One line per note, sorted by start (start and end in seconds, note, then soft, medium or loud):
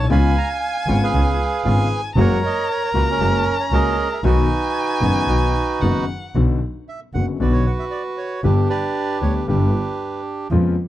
0.00 0.12 A5 medium
0.04 0.10 C2 medium
0.09 0.31 C#2 medium
0.09 0.32 C#2 medium
0.09 0.32 C#3 medium
0.09 0.32 G#3 medium
0.09 0.32 B3 medium
0.09 0.32 C#4 medium
0.09 0.32 F4 medium
0.09 1.02 F5 medium
0.09 1.65 G#5 medium
0.09 0.61 G#5 medium
0.09 0.37 B5 medium
0.38 0.49 A#5 medium
0.63 0.89 G#5 medium
0.87 1.09 G#1 medium
0.87 1.09 G#2 medium
0.87 1.09 C#3 soft
0.87 1.09 G#3 soft
0.87 1.09 B3 soft
0.87 1.09 C#4 soft
0.87 1.09 F4 medium
0.87 1.02 F#5 medium
1.03 2.01 G#4 medium
1.03 2.01 B4 medium
1.03 1.88 F5 medium
1.13 1.35 C#2 medium
1.13 1.35 C#3 soft
1.13 1.35 G#3 soft
1.13 1.35 B3 soft
1.13 1.35 C#4 soft
1.13 1.35 F4 medium
1.64 1.86 G#1 medium
1.64 1.87 G#1 medium
1.64 1.87 G#2 medium
1.64 1.87 C#3 medium
1.64 1.87 G#3 soft
1.64 1.86 B3 medium
1.64 1.87 B3 soft
1.64 1.86 C#4 soft
1.64 1.86 F4 medium
1.64 1.87 F4 medium
1.64 2.13 G#5 medium
2.16 2.38 F#1 loud
2.16 2.38 F#2 medium
2.16 2.38 C#3 medium
2.16 2.38 F#3 loud
2.16 2.38 G#3 medium
2.16 2.38 A#3 medium
2.16 2.39 A#3 medium
2.16 2.38 F#4 medium
2.16 2.39 F#4 medium
2.16 2.69 C#5 medium
2.16 2.42 F#5 medium
2.16 4.25 A#5 loud
2.20 3.09 A#4 medium
2.46 2.68 D#5 medium
2.71 2.83 C#5 medium
2.85 2.90 C#5 medium
2.93 3.15 C#2 medium
2.93 3.16 C#2 medium
2.93 3.16 C#3 medium
2.93 3.15 G#3 soft
2.93 3.16 G#3 soft
2.93 3.15 A#3 soft
2.93 3.16 A#3 soft
2.93 3.16 F#4 medium
2.98 3.03 B4 medium
3.10 4.08 C#4 medium
3.10 3.57 A#4 loud
3.19 3.41 F#1 medium
3.19 3.42 F#2 medium
3.19 3.42 C#3 soft
3.19 3.42 F#3 medium
3.19 3.41 G#3 soft
3.19 3.42 G#3 soft
3.19 3.41 A#3 soft
3.19 3.42 A#3 soft
3.19 3.41 F#4 medium
3.19 3.42 F#4 medium
3.60 3.66 C#5 medium
3.71 3.93 C#2 medium
3.71 3.94 C#2 medium
3.71 3.94 C#3 medium
3.71 3.93 G#3 medium
3.71 3.94 G#3 soft
3.71 3.93 A#3 soft
3.71 3.94 A#3 soft
3.71 3.94 F#4 medium
3.71 4.21 G#4 medium
3.71 4.21 A#4 medium
3.71 4.09 D#5 loud
4.13 4.19 E5 medium
4.24 4.45 B1 medium
4.24 4.46 B1 medium
4.24 4.46 B2 medium
4.24 4.46 D#3 medium
4.24 4.46 F#3 medium
4.24 4.46 B3 medium
4.24 4.46 D#4 medium
4.24 6.05 D#4 medium
4.24 4.46 F#4 medium
4.24 6.05 F#4 medium
4.24 6.05 B4 loud
4.24 5.83 G#5 loud
5.01 5.23 F#1 medium
5.01 5.24 F#1 medium
5.01 5.24 F#2 medium
5.01 5.23 D#3 soft
5.01 5.24 F#3 soft
5.01 5.24 B3 soft
5.01 5.24 D#4 soft
5.01 5.24 F#4 medium
5.27 5.50 B1 medium
5.27 5.51 B1 soft
5.27 5.51 B2 medium
5.27 5.50 D#3 soft
5.27 5.51 F#3 soft
5.27 5.50 B3 soft
5.27 5.51 B3 soft
5.27 5.50 D#4 soft
5.27 5.50 F#4 soft
5.27 5.51 F#4 medium
5.81 6.04 F#1 medium
5.81 6.04 F#2 medium
5.81 6.04 D#3 medium
5.81 6.04 F#3 soft
5.81 6.04 B3 soft
5.81 6.04 D#4 soft
5.81 6.04 F#4 soft
5.81 6.05 F#4 medium
5.81 6.35 F#5 medium
6.35 6.57 B1 medium
6.35 6.58 B1 medium
6.35 6.57 B2 medium
6.35 6.57 D3 medium
6.35 6.57 F#3 medium
6.35 6.58 B3 medium
6.35 6.57 F#4 medium
6.89 7.00 E5 medium
7.14 7.36 F#1 medium
7.14 7.36 F#2 soft
7.14 7.36 D3 soft
7.14 7.36 F#3 soft
7.14 7.36 B3 soft
7.14 7.36 F#4 soft
7.14 7.26 F#5 medium
7.39 7.62 B1 medium
7.39 7.62 B2 medium
7.39 7.62 D3 medium
7.39 7.62 F#3 medium
7.39 7.62 B3 medium
7.39 7.62 F#4 medium
7.39 8.41 F#4 medium
7.39 8.41 B4 medium
7.39 7.53 D5 medium
7.53 7.66 C#5 medium
7.66 7.72 F#5 medium
7.79 7.85 E5 medium
7.91 8.03 D5 medium
8.18 8.42 C#5 medium
8.44 8.65 G1 medium
8.44 8.66 G1 medium
8.44 8.66 G2 medium
8.44 8.65 D3 medium
8.44 8.65 G3 medium
8.44 8.65 B3 medium
8.44 9.43 D4 medium
8.44 8.66 G4 medium
8.44 8.68 G4 soft
8.44 8.55 B4 medium
8.70 9.47 G4 medium
8.70 9.47 B4 medium
8.70 9.18 D5 medium
9.21 9.43 D2 medium
9.21 9.43 D2 soft
9.21 9.43 D3 soft
9.21 9.43 G3 soft
9.21 9.44 B3 soft
9.21 9.44 G4 soft
9.21 9.34 C#5 medium
9.48 9.69 G1 loud
9.48 9.70 G1 medium
9.48 9.69 G2 medium
9.48 9.69 D3 medium
9.48 9.69 G3 medium
9.48 9.70 B3 medium
9.48 10.48 D4 soft
9.48 9.69 G4 medium
9.48 10.48 G4 medium
9.48 10.22 B4 medium
10.51 10.73 F2 medium
10.51 10.73 C#3 medium
10.51 10.73 F3 medium
10.51 10.73 G#3 medium
10.51 10.73 B3 medium
10.51 10.73 F4 medium